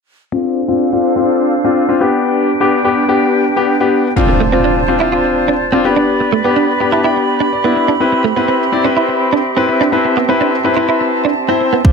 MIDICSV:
0, 0, Header, 1, 7, 480
1, 0, Start_track
1, 0, Key_signature, 0, "major"
1, 0, Tempo, 480000
1, 327, Time_signature, 4, 2, 24, 8
1, 11925, End_track
2, 0, Start_track
2, 0, Title_t, "Flute section"
2, 0, Program_c, 0, 73
2, 331, Note_on_c, 0, 62, 76
2, 331, Note_on_c, 0, 69, 68
2, 331, Note_on_c, 0, 72, 64
2, 332, Note_on_c, 0, 77, 80
2, 1992, Note_off_c, 0, 62, 0
2, 1992, Note_off_c, 0, 69, 0
2, 1992, Note_off_c, 0, 72, 0
2, 1992, Note_off_c, 0, 77, 0
2, 2003, Note_on_c, 0, 79, 77
2, 2004, Note_on_c, 0, 62, 72
2, 2005, Note_on_c, 0, 67, 65
2, 2005, Note_on_c, 0, 71, 61
2, 4143, Note_off_c, 0, 79, 0
2, 4144, Note_off_c, 0, 62, 0
2, 4144, Note_off_c, 0, 67, 0
2, 4144, Note_off_c, 0, 71, 0
2, 4166, Note_on_c, 0, 65, 77
2, 4166, Note_on_c, 0, 74, 72
2, 4167, Note_on_c, 0, 72, 69
2, 4167, Note_on_c, 0, 81, 85
2, 5829, Note_off_c, 0, 65, 0
2, 5830, Note_off_c, 0, 72, 0
2, 5830, Note_off_c, 0, 81, 0
2, 5846, Note_on_c, 0, 71, 62
2, 5847, Note_on_c, 0, 67, 74
2, 5847, Note_on_c, 0, 83, 76
2, 7770, Note_off_c, 0, 71, 0
2, 7786, Note_off_c, 0, 74, 0
2, 8007, Note_on_c, 0, 76, 71
2, 8008, Note_on_c, 0, 60, 73
2, 9607, Note_off_c, 0, 83, 0
2, 9924, Note_on_c, 0, 81, 87
2, 11528, Note_off_c, 0, 67, 0
2, 11809, Note_off_c, 0, 60, 0
2, 11809, Note_off_c, 0, 76, 0
2, 11846, Note_on_c, 0, 65, 80
2, 11846, Note_on_c, 0, 72, 71
2, 11846, Note_on_c, 0, 74, 70
2, 11925, Note_off_c, 0, 65, 0
2, 11925, Note_off_c, 0, 72, 0
2, 11925, Note_off_c, 0, 74, 0
2, 11925, Note_off_c, 0, 81, 0
2, 11925, End_track
3, 0, Start_track
3, 0, Title_t, "Clean electric guitar"
3, 0, Program_c, 1, 27
3, 4404, Note_on_c, 1, 57, 75
3, 4488, Note_off_c, 1, 57, 0
3, 4524, Note_on_c, 1, 60, 78
3, 4608, Note_off_c, 1, 60, 0
3, 4643, Note_on_c, 1, 62, 77
3, 4727, Note_off_c, 1, 62, 0
3, 5003, Note_on_c, 1, 64, 76
3, 5087, Note_off_c, 1, 64, 0
3, 5123, Note_on_c, 1, 65, 78
3, 5207, Note_off_c, 1, 65, 0
3, 5482, Note_on_c, 1, 62, 71
3, 5566, Note_off_c, 1, 62, 0
3, 5723, Note_on_c, 1, 60, 73
3, 5807, Note_off_c, 1, 60, 0
3, 5965, Note_on_c, 1, 62, 74
3, 6048, Note_off_c, 1, 62, 0
3, 6325, Note_on_c, 1, 57, 78
3, 6408, Note_off_c, 1, 57, 0
3, 6444, Note_on_c, 1, 59, 78
3, 6528, Note_off_c, 1, 59, 0
3, 6564, Note_on_c, 1, 62, 79
3, 6647, Note_off_c, 1, 62, 0
3, 6924, Note_on_c, 1, 64, 80
3, 7007, Note_off_c, 1, 64, 0
3, 7044, Note_on_c, 1, 64, 72
3, 7127, Note_off_c, 1, 64, 0
3, 7404, Note_on_c, 1, 62, 70
3, 7487, Note_off_c, 1, 62, 0
3, 7643, Note_on_c, 1, 59, 74
3, 7727, Note_off_c, 1, 59, 0
3, 7884, Note_on_c, 1, 62, 78
3, 7967, Note_off_c, 1, 62, 0
3, 8243, Note_on_c, 1, 57, 82
3, 8327, Note_off_c, 1, 57, 0
3, 8364, Note_on_c, 1, 59, 78
3, 8448, Note_off_c, 1, 59, 0
3, 8484, Note_on_c, 1, 60, 79
3, 8567, Note_off_c, 1, 60, 0
3, 8846, Note_on_c, 1, 62, 81
3, 8928, Note_off_c, 1, 62, 0
3, 8966, Note_on_c, 1, 64, 75
3, 9049, Note_off_c, 1, 64, 0
3, 9327, Note_on_c, 1, 62, 70
3, 9409, Note_off_c, 1, 62, 0
3, 9566, Note_on_c, 1, 60, 73
3, 9649, Note_off_c, 1, 60, 0
3, 9808, Note_on_c, 1, 62, 75
3, 9890, Note_off_c, 1, 62, 0
3, 10170, Note_on_c, 1, 59, 78
3, 10251, Note_off_c, 1, 59, 0
3, 10288, Note_on_c, 1, 60, 78
3, 10370, Note_off_c, 1, 60, 0
3, 10409, Note_on_c, 1, 62, 80
3, 10490, Note_off_c, 1, 62, 0
3, 10766, Note_on_c, 1, 64, 77
3, 10849, Note_off_c, 1, 64, 0
3, 10887, Note_on_c, 1, 64, 74
3, 10969, Note_off_c, 1, 64, 0
3, 11248, Note_on_c, 1, 62, 70
3, 11330, Note_off_c, 1, 62, 0
3, 11487, Note_on_c, 1, 60, 72
3, 11569, Note_off_c, 1, 60, 0
3, 11727, Note_on_c, 1, 59, 74
3, 11810, Note_off_c, 1, 59, 0
3, 11925, End_track
4, 0, Start_track
4, 0, Title_t, "Grand piano"
4, 0, Program_c, 2, 0
4, 323, Note_on_c, 2, 60, 76
4, 326, Note_on_c, 2, 62, 70
4, 329, Note_on_c, 2, 65, 84
4, 584, Note_off_c, 2, 60, 0
4, 585, Note_off_c, 2, 62, 0
4, 587, Note_off_c, 2, 65, 0
4, 684, Note_on_c, 2, 60, 82
4, 687, Note_on_c, 2, 62, 70
4, 688, Note_on_c, 2, 65, 88
4, 858, Note_off_c, 2, 60, 0
4, 859, Note_off_c, 2, 62, 0
4, 860, Note_off_c, 2, 65, 0
4, 926, Note_on_c, 2, 60, 79
4, 929, Note_on_c, 2, 62, 76
4, 932, Note_on_c, 2, 65, 86
4, 1099, Note_off_c, 2, 60, 0
4, 1101, Note_off_c, 2, 62, 0
4, 1102, Note_off_c, 2, 65, 0
4, 1161, Note_on_c, 2, 60, 77
4, 1165, Note_on_c, 2, 62, 71
4, 1167, Note_on_c, 2, 65, 83
4, 1509, Note_off_c, 2, 60, 0
4, 1511, Note_off_c, 2, 62, 0
4, 1512, Note_off_c, 2, 65, 0
4, 1644, Note_on_c, 2, 60, 82
4, 1647, Note_on_c, 2, 62, 76
4, 1649, Note_on_c, 2, 65, 88
4, 1818, Note_off_c, 2, 60, 0
4, 1820, Note_off_c, 2, 62, 0
4, 1821, Note_off_c, 2, 65, 0
4, 1887, Note_on_c, 2, 60, 78
4, 1890, Note_on_c, 2, 62, 75
4, 1893, Note_on_c, 2, 65, 88
4, 1992, Note_off_c, 2, 62, 0
4, 2005, Note_on_c, 2, 59, 83
4, 2007, Note_off_c, 2, 60, 0
4, 2007, Note_on_c, 2, 62, 79
4, 2010, Note_off_c, 2, 65, 0
4, 2011, Note_on_c, 2, 67, 93
4, 2486, Note_off_c, 2, 59, 0
4, 2487, Note_off_c, 2, 62, 0
4, 2489, Note_off_c, 2, 67, 0
4, 2604, Note_on_c, 2, 59, 82
4, 2606, Note_on_c, 2, 62, 74
4, 2610, Note_on_c, 2, 67, 91
4, 2778, Note_off_c, 2, 59, 0
4, 2779, Note_off_c, 2, 62, 0
4, 2781, Note_off_c, 2, 67, 0
4, 2844, Note_on_c, 2, 59, 83
4, 2846, Note_on_c, 2, 62, 73
4, 2849, Note_on_c, 2, 67, 88
4, 3018, Note_off_c, 2, 59, 0
4, 3019, Note_off_c, 2, 62, 0
4, 3020, Note_off_c, 2, 67, 0
4, 3084, Note_on_c, 2, 59, 79
4, 3086, Note_on_c, 2, 62, 76
4, 3089, Note_on_c, 2, 67, 90
4, 3431, Note_off_c, 2, 59, 0
4, 3432, Note_off_c, 2, 62, 0
4, 3433, Note_off_c, 2, 67, 0
4, 3564, Note_on_c, 2, 59, 82
4, 3566, Note_on_c, 2, 62, 74
4, 3570, Note_on_c, 2, 67, 89
4, 3738, Note_off_c, 2, 59, 0
4, 3739, Note_off_c, 2, 62, 0
4, 3741, Note_off_c, 2, 67, 0
4, 3804, Note_on_c, 2, 59, 84
4, 3806, Note_on_c, 2, 62, 75
4, 3807, Note_on_c, 2, 67, 89
4, 4064, Note_off_c, 2, 59, 0
4, 4066, Note_off_c, 2, 62, 0
4, 4066, Note_off_c, 2, 67, 0
4, 4163, Note_on_c, 2, 60, 78
4, 4166, Note_on_c, 2, 62, 75
4, 4168, Note_on_c, 2, 65, 86
4, 4424, Note_off_c, 2, 60, 0
4, 4426, Note_off_c, 2, 62, 0
4, 4426, Note_off_c, 2, 65, 0
4, 4526, Note_on_c, 2, 60, 80
4, 4528, Note_on_c, 2, 62, 75
4, 4531, Note_on_c, 2, 65, 93
4, 4785, Note_off_c, 2, 60, 0
4, 4786, Note_off_c, 2, 62, 0
4, 4788, Note_off_c, 2, 65, 0
4, 4884, Note_on_c, 2, 60, 79
4, 4888, Note_on_c, 2, 62, 70
4, 4890, Note_on_c, 2, 65, 86
4, 4972, Note_off_c, 2, 60, 0
4, 4974, Note_off_c, 2, 62, 0
4, 4975, Note_off_c, 2, 65, 0
4, 5007, Note_on_c, 2, 60, 80
4, 5010, Note_on_c, 2, 62, 71
4, 5013, Note_on_c, 2, 65, 90
4, 5525, Note_off_c, 2, 60, 0
4, 5526, Note_off_c, 2, 62, 0
4, 5528, Note_off_c, 2, 65, 0
4, 5725, Note_on_c, 2, 60, 81
4, 5727, Note_on_c, 2, 62, 76
4, 5730, Note_on_c, 2, 65, 93
4, 5832, Note_off_c, 2, 62, 0
4, 5845, Note_on_c, 2, 59, 83
4, 5846, Note_off_c, 2, 60, 0
4, 5846, Note_on_c, 2, 62, 77
4, 5848, Note_off_c, 2, 65, 0
4, 5850, Note_on_c, 2, 67, 92
4, 6326, Note_off_c, 2, 59, 0
4, 6326, Note_off_c, 2, 62, 0
4, 6328, Note_off_c, 2, 67, 0
4, 6446, Note_on_c, 2, 59, 85
4, 6450, Note_on_c, 2, 62, 78
4, 6452, Note_on_c, 2, 67, 93
4, 6706, Note_off_c, 2, 59, 0
4, 6707, Note_off_c, 2, 62, 0
4, 6708, Note_off_c, 2, 67, 0
4, 6805, Note_on_c, 2, 59, 77
4, 6806, Note_on_c, 2, 62, 74
4, 6808, Note_on_c, 2, 83, 67
4, 6810, Note_on_c, 2, 67, 86
4, 6892, Note_off_c, 2, 59, 0
4, 6893, Note_off_c, 2, 62, 0
4, 6895, Note_off_c, 2, 67, 0
4, 6919, Note_off_c, 2, 83, 0
4, 6926, Note_on_c, 2, 59, 77
4, 6927, Note_on_c, 2, 81, 70
4, 6929, Note_on_c, 2, 62, 77
4, 6930, Note_on_c, 2, 67, 88
4, 7038, Note_off_c, 2, 81, 0
4, 7048, Note_on_c, 2, 79, 73
4, 7445, Note_off_c, 2, 59, 0
4, 7446, Note_off_c, 2, 62, 0
4, 7447, Note_off_c, 2, 67, 0
4, 7494, Note_off_c, 2, 79, 0
4, 7527, Note_on_c, 2, 74, 73
4, 7645, Note_on_c, 2, 59, 83
4, 7649, Note_on_c, 2, 62, 78
4, 7650, Note_on_c, 2, 64, 89
4, 7905, Note_off_c, 2, 59, 0
4, 7907, Note_off_c, 2, 62, 0
4, 7907, Note_off_c, 2, 64, 0
4, 7973, Note_off_c, 2, 74, 0
4, 8004, Note_on_c, 2, 60, 84
4, 8006, Note_on_c, 2, 64, 75
4, 8010, Note_on_c, 2, 71, 85
4, 8264, Note_off_c, 2, 60, 0
4, 8266, Note_off_c, 2, 64, 0
4, 8267, Note_off_c, 2, 71, 0
4, 8364, Note_on_c, 2, 60, 83
4, 8367, Note_on_c, 2, 64, 79
4, 8369, Note_on_c, 2, 71, 93
4, 8625, Note_off_c, 2, 60, 0
4, 8626, Note_off_c, 2, 64, 0
4, 8627, Note_off_c, 2, 71, 0
4, 8724, Note_on_c, 2, 60, 78
4, 8728, Note_on_c, 2, 64, 71
4, 8729, Note_on_c, 2, 74, 87
4, 8812, Note_off_c, 2, 60, 0
4, 8814, Note_off_c, 2, 64, 0
4, 8814, Note_off_c, 2, 74, 0
4, 8845, Note_on_c, 2, 60, 82
4, 8848, Note_on_c, 2, 64, 73
4, 8850, Note_on_c, 2, 71, 93
4, 9364, Note_off_c, 2, 60, 0
4, 9365, Note_off_c, 2, 64, 0
4, 9366, Note_off_c, 2, 71, 0
4, 9565, Note_on_c, 2, 60, 83
4, 9568, Note_on_c, 2, 64, 76
4, 9571, Note_on_c, 2, 71, 97
4, 9825, Note_off_c, 2, 60, 0
4, 9826, Note_off_c, 2, 64, 0
4, 9828, Note_off_c, 2, 71, 0
4, 9923, Note_on_c, 2, 60, 83
4, 9926, Note_on_c, 2, 64, 74
4, 9928, Note_on_c, 2, 71, 89
4, 10184, Note_off_c, 2, 60, 0
4, 10185, Note_off_c, 2, 64, 0
4, 10186, Note_off_c, 2, 71, 0
4, 10286, Note_on_c, 2, 60, 83
4, 10289, Note_on_c, 2, 64, 77
4, 10291, Note_on_c, 2, 71, 97
4, 10545, Note_off_c, 2, 60, 0
4, 10547, Note_off_c, 2, 64, 0
4, 10548, Note_off_c, 2, 71, 0
4, 10644, Note_on_c, 2, 60, 78
4, 10646, Note_on_c, 2, 64, 72
4, 10649, Note_on_c, 2, 71, 84
4, 10732, Note_off_c, 2, 60, 0
4, 10732, Note_off_c, 2, 64, 0
4, 10734, Note_off_c, 2, 71, 0
4, 10765, Note_on_c, 2, 60, 78
4, 10767, Note_on_c, 2, 64, 77
4, 10769, Note_on_c, 2, 71, 88
4, 11284, Note_off_c, 2, 60, 0
4, 11285, Note_off_c, 2, 64, 0
4, 11286, Note_off_c, 2, 71, 0
4, 11484, Note_on_c, 2, 60, 83
4, 11485, Note_on_c, 2, 64, 73
4, 11488, Note_on_c, 2, 72, 94
4, 11744, Note_off_c, 2, 60, 0
4, 11745, Note_off_c, 2, 64, 0
4, 11747, Note_off_c, 2, 72, 0
4, 11844, Note_on_c, 2, 62, 83
4, 11847, Note_on_c, 2, 65, 74
4, 11848, Note_on_c, 2, 72, 87
4, 11925, Note_off_c, 2, 62, 0
4, 11925, Note_off_c, 2, 65, 0
4, 11925, Note_off_c, 2, 72, 0
4, 11925, End_track
5, 0, Start_track
5, 0, Title_t, "Impact"
5, 0, Program_c, 3, 103
5, 4166, Note_on_c, 3, 60, 80
5, 6086, Note_off_c, 3, 60, 0
5, 11925, End_track
6, 0, Start_track
6, 0, Title_t, "Muted clean electric guitar strokes"
6, 4286, Note_on_c, 9, 29, 41
6, 4386, Note_off_c, 9, 29, 0
6, 4884, Note_on_c, 9, 29, 45
6, 4984, Note_off_c, 9, 29, 0
6, 5244, Note_on_c, 9, 29, 43
6, 5344, Note_off_c, 9, 29, 0
6, 5844, Note_on_c, 9, 29, 44
6, 5944, Note_off_c, 9, 29, 0
6, 6204, Note_on_c, 9, 29, 42
6, 6304, Note_off_c, 9, 29, 0
6, 6804, Note_on_c, 9, 29, 45
6, 6904, Note_off_c, 9, 29, 0
6, 7164, Note_on_c, 9, 29, 44
6, 7264, Note_off_c, 9, 29, 0
6, 7764, Note_on_c, 9, 29, 46
6, 7864, Note_off_c, 9, 29, 0
6, 8124, Note_on_c, 9, 29, 41
6, 8224, Note_off_c, 9, 29, 0
6, 8726, Note_on_c, 9, 29, 42
6, 8826, Note_off_c, 9, 29, 0
6, 9086, Note_on_c, 9, 29, 42
6, 9186, Note_off_c, 9, 29, 0
6, 9688, Note_on_c, 9, 29, 43
6, 9788, Note_off_c, 9, 29, 0
6, 10049, Note_on_c, 9, 29, 41
6, 10149, Note_off_c, 9, 29, 0
6, 10649, Note_on_c, 9, 29, 43
6, 10749, Note_off_c, 9, 29, 0
6, 11008, Note_on_c, 9, 29, 45
6, 11108, Note_off_c, 9, 29, 0
6, 11607, Note_on_c, 9, 29, 43
6, 11707, Note_off_c, 9, 29, 0
6, 11925, End_track
7, 0, Start_track
7, 0, Title_t, "Drums"
7, 11847, Note_on_c, 9, 36, 114
7, 11925, Note_off_c, 9, 36, 0
7, 11925, End_track
0, 0, End_of_file